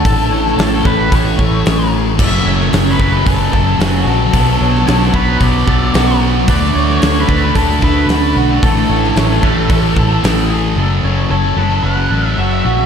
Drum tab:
CC |----------------|x---------------|----------------|----------------|
HH |o---o---o---o---|----o---o---o---|o---o---o---o---|o---o---o---o---|
SD |---oo-------o---|---ooo------o---|---ooo------o---|---oo-------o---|
BD |o-----o-o-o-----|o-----o-o-o-----|o-----o-o-o-----|o-----o-o-o-----|

CC |----------------|----------------|
HH |o---o---o---o---|----------------|
SD |---oo-------o---|----------------|
BD |o-----o-o-o-----|----------------|